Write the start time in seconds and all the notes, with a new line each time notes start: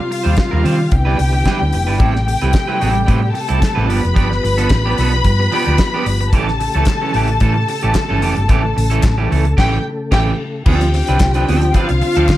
Already playing: C3 G3 F4 F5
0.10 muted clean electric guitar stroke, open hi-hat
0.23 D#2 G3 C4 F4 C5
0.36 muted clean electric guitar stroke, kick, snare, closed hi-hat
0.51 D#2 G3 C4 F4 A#4
0.63 D#3 G3 C4 F4 C5, open hi-hat
0.78 muted clean electric guitar stroke
0.91 C2 D3 B3 E4 G4 G5, muted clean electric guitar stroke, kick, closed hi-hat
1.05 G3 D4 E4 B4
1.18 C2, muted clean electric guitar stroke, open hi-hat
1.33 muted clean electric guitar stroke
1.45 G3 D4 E4 B4, kick, snare, closed hi-hat
1.61 D2, muted clean electric guitar stroke
1.72 F1, muted clean electric guitar stroke, open hi-hat
1.87 G1 G3 D4 E4 B4
1.99 A1 C3 G3 A3 C4 E4 G4 A4 G5, kick, closed hi-hat
2.15 muted clean electric guitar stroke, snare
2.27 muted clean electric guitar stroke, open hi-hat
2.41 C2 G3 C4 E4 B4, closed hi-hat
2.53 muted clean electric guitar stroke, kick, snare, closed hi-hat
2.67 G3 C4 E4 B4
2.80 A1 G3 C4 E4 A4, open hi-hat
2.95 muted clean electric guitar stroke, closed hi-hat
3.06 A2 G3 C4 E4 B4, kick, closed hi-hat
3.21 muted clean electric guitar stroke
3.33 A4 A5, muted clean electric guitar stroke, open hi-hat
3.48 C2 G3 C4 E4 A4, closed hi-hat
3.61 muted clean electric guitar stroke, kick, snare, closed hi-hat
3.75 A1 G3 C4 E4 B4
3.87 G1 F3 B3 D4 G4 B4 B5, open hi-hat
4.02 F1, muted clean electric guitar stroke, closed hi-hat
4.14 G1 F3 B3 D4 G4, kick, closed hi-hat
4.30 muted clean electric guitar stroke, snare
4.43 G1, muted clean electric guitar stroke, open hi-hat
4.58 F3 B3 D4 A4, closed hi-hat
4.69 A1, muted clean electric guitar stroke, kick, snare, closed hi-hat
4.85 F3 B3 D4 G4
4.98 B1 F3 B3 D4 A4, open hi-hat
5.12 muted clean electric guitar stroke, closed hi-hat
5.24 G2, muted clean electric guitar stroke, kick, closed hi-hat
5.40 muted clean electric guitar stroke
5.52 F3 B3 D4 G4, open hi-hat
5.65 D2 F3 B3 D4 G4, closed hi-hat
5.78 muted clean electric guitar stroke, kick, snare, closed hi-hat
5.94 F3 B3 D4 G4
6.06 G1, muted clean electric guitar stroke, open hi-hat
6.21 muted clean electric guitar stroke, closed hi-hat
6.33 A1 C#3 E3 A3 C#4 G4 A4 A5, kick, closed hi-hat
6.48 muted clean electric guitar stroke, snare
6.60 muted clean electric guitar stroke, open hi-hat
6.74 C#2 E3 A3 C#4 A4, closed hi-hat
6.85 muted clean electric guitar stroke, kick, snare, clap, closed hi-hat
7.01 E3 A3 C#4 A4
7.14 A1 E3 A3 C#4 G4, open hi-hat
7.28 muted clean electric guitar stroke, closed hi-hat
7.40 A2 E3 A3 C#4 A4, kick, closed hi-hat
7.55 muted clean electric guitar stroke
7.68 muted clean electric guitar stroke, open hi-hat
7.81 A1 E3 A3 C#4 G4, closed hi-hat
7.94 kick, snare, clap, closed hi-hat
8.09 G1 E3 A3 C#4 A4
8.22 F1 E3 A3 C#4 G4, open hi-hat
8.36 G1, muted clean electric guitar stroke, closed hi-hat
8.48 A1 E3 A3 C#4 G4 A4, kick, closed hi-hat
8.63 muted clean electric guitar stroke
8.76 A1, muted clean electric guitar stroke, open hi-hat
8.90 E3 A3 C#4 A4, closed hi-hat
9.03 A1, muted clean electric guitar stroke, kick, snare, clap, closed hi-hat
9.18 E3 A3 C#4 G4
9.30 C#2 E3 A3 C#4 A4, open hi-hat
9.45 muted clean electric guitar stroke, closed hi-hat
9.57 A1 E3 A3 C#4 G4 G5, kick, snare, crash
10.11 A1 E3 A3 C#4 G4 G5, kick, snare, crash
10.66 D2 D3 F3 C4 D4 F4 G4 A4 G5, kick, crash
10.81 muted clean electric guitar stroke, closed hi-hat
10.94 muted clean electric guitar stroke, open hi-hat
11.07 C2 F3 C4 D4 B4, closed hi-hat
11.20 C2, muted clean electric guitar stroke, kick, snare, clap
11.34 F3 C4 D4 B4, closed hi-hat
11.48 D2 F3 C4 D4 A4, open hi-hat
11.61 muted clean electric guitar stroke, closed hi-hat
11.74 F3 C4 D4 F4 B4 F5, kick, closed hi-hat
11.89 C2, muted clean electric guitar stroke, closed hi-hat
12.01 muted clean electric guitar stroke, open hi-hat
12.15 D2 F3 C4 D4 A4, closed hi-hat
12.29 D3, muted clean electric guitar stroke, kick, snare, clap